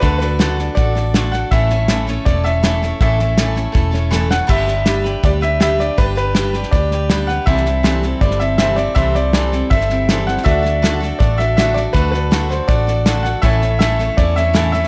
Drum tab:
CC |----------------|----------------|----------------|x---------------|
HH |----p-------p---|----p-------p---|----p-------p---|----p-------p---|
SD |o-o-o-o-o-o-o-o-|o-o-o-o-o-o-o-o-|o-o-o-o-o-o-o-o-|o-o-o-o-o-o-o-o-|
BD |o-------o-------|o-------o-------|o-------o-------|o-------o-------|

CC |----------------|----------------|----------------|----------------|
HH |----p-------p---|----p-------p---|----p-------p---|----p-------p---|
SD |o-o-o-ooo-o-o-o-|ooo-o-o-ooo-o-o-|o-o-o-o-ooo-o-oo|o-o-o-o-o-o-o-o-|
BD |o-------o-------|o-------o-------|o-------o-------|o-------o-------|

CC |----------------|----------------|
HH |----p-------p---|----p-------p---|
SD |o-o-o-o-o-o-o-o-|o-o-o-o-o-o-o-oo|
BD |o-------o-------|o-------o-------|